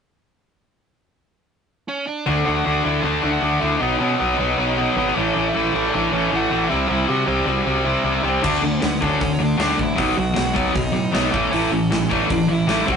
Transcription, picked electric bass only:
2.28 2.42 D2 medium
2.48 2.61 D2 medium
2.66 2.80 D2 medium
2.85 2.99 D2 medium
3.03 3.17 D2 medium
3.23 3.37 D2 medium
3.42 3.56 D2 medium
3.62 3.76 D2 medium
3.80 3.95 B1 medium
4.00 4.14 B2 medium
4.20 4.34 B1 medium
4.39 4.53 B1 medium
4.58 4.86 B1 medium
4.96 5.10 G#1 medium
5.16 5.30 A1 medium
5.36 5.50 A1 medium
5.55 5.69 A1 medium
5.74 5.88 A1 loud
5.94 6.08 A1 medium
6.12 6.26 A1 medium
6.32 6.46 A1 medium
6.52 6.66 A1 medium
6.72 6.85 C2 medium
6.90 7.04 C2 medium
7.09 7.23 C3 medium
7.27 7.42 C2 medium
7.46 7.61 C2 medium
7.66 7.94 C2 medium
8.04 8.18 C2 medium
8.23 8.38 C2 medium
8.44 8.58 D2 medium
8.61 8.76 D2 medium
8.82 8.96 D2 medium
9.02 9.16 D2 medium
9.21 9.35 D2 medium
9.39 9.54 D2 medium
9.58 9.72 D2 medium
9.79 9.98 A1 medium
9.98 10.12 B1 medium
10.17 10.31 B1 loud
10.37 10.51 B1 medium
10.56 10.70 B1 medium
10.75 10.89 B1 medium
10.95 11.08 A2 medium
11.14 11.28 B1 medium
11.34 11.47 A1 medium
11.52 11.66 A1 medium
11.71 11.85 A1 medium
11.90 12.04 A1 medium
12.11 12.24 A1 medium
12.30 12.44 A1 medium
12.48 12.62 A1 medium
12.67 12.81 A1 medium
12.88 12.96 C2 medium

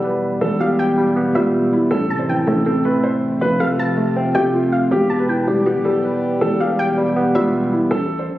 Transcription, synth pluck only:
0.00 0.37 G5 medium
0.60 0.78 F5 medium
0.79 1.32 G5 loud
1.35 1.88 E5 medium
2.10 2.28 A5 medium
2.29 3.38 G5 medium
3.60 3.78 F5 medium
3.79 4.32 A5 medium
4.35 4.70 G5 medium
4.72 4.90 F5 medium
5.10 5.28 A5 medium
5.29 6.38 G5 medium
6.60 6.78 F5 medium
6.79 7.32 G5 medium
7.35 7.88 E5 medium

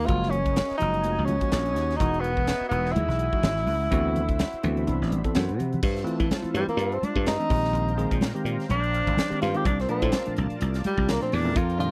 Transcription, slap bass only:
0.09 0.60 F#1 medium
0.71 muted slap bass stroke soft
0.81 1.06 F#1 medium
1.06 1.16 F1 medium
1.18 1.38 C#2 medium
1.53 1.76 A#1 loud
1.76 1.96 D#2 medium
2.00 2.51 E1 medium
2.61 muted slap bass stroke soft
2.71 2.97 E1 medium
2.95 3.07 D#2 medium
3.08 3.28 B1 medium
3.43 3.67 G#1 medium
3.67 3.87 C#2 medium
3.92 4.43 D2 medium
4.54 muted slap bass stroke soft
4.64 4.89 D2 medium
4.88 4.99 C2 medium
5.02 5.21 A1 medium
5.36 5.59 F#2 medium
5.59 5.79 C3 medium
5.83 6.03 G2 medium
6.20 6.29 E3 medium
6.44 muted slap bass stroke soft
6.54 6.66 G2 medium
6.68 muted slap bass stroke soft
6.77 6.98 G2 medium
7.02 muted slap bass stroke soft
7.16 7.36 G2 medium
7.51 7.71 A#1 medium
7.73 8.05 A#1 medium
8.12 8.32 A#2 medium
8.45 8.56 A#2 medium
8.70 9.01 A#1 medium
9.07 9.16 G#1 medium
9.31 muted slap bass stroke soft
9.42 9.53 G2 medium
9.65 9.85 C2 loud
10.02 10.11 A2 medium
10.28 muted slap bass stroke soft
10.38 10.49 C2 medium
10.62 10.81 C2 medium
10.98 11.18 C2 loud
11.33 11.53 E2 medium
11.56 11.87 F2 loud

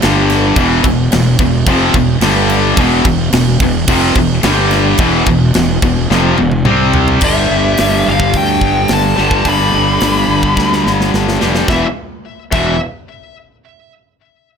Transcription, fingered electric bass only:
0.04 0.54 G1 loud
0.56 0.82 E1 loud
0.85 1.10 E1 medium
1.13 1.38 E1 loud
1.39 1.65 E1 medium
1.67 1.93 F1 loud
1.94 2.20 E1 medium
2.20 2.73 G1 medium
2.77 3.04 E1 loud
3.05 3.31 E1 medium
3.33 3.59 E1 medium
3.61 3.87 E1 medium
3.88 4.14 F1 loud
4.16 4.42 E1 medium
4.43 4.95 G1 medium
4.99 5.25 E1 loud
5.27 5.53 E1 medium
5.56 5.81 E1 medium
5.83 6.09 E1 medium
6.11 6.37 F1 loud
6.39 6.64 E1 medium
6.65 7.17 C2 medium
7.22 7.47 G1 medium
7.51 7.75 G1 medium
7.79 8.04 G1 medium
8.08 8.32 G1 medium
8.34 8.59 D2 medium
8.61 8.86 G1 medium
8.90 9.14 G1 medium
9.18 9.42 G1 medium
9.46 9.70 G1 loud
9.74 9.99 G1 medium
10.02 10.26 G1 medium
10.28 10.53 G1 medium
10.58 10.82 D2 medium
10.86 11.10 G1 medium
11.14 11.38 G1 medium
11.43 11.67 F1 medium
11.68 11.84 E1 loud
12.53 12.78 E1 medium

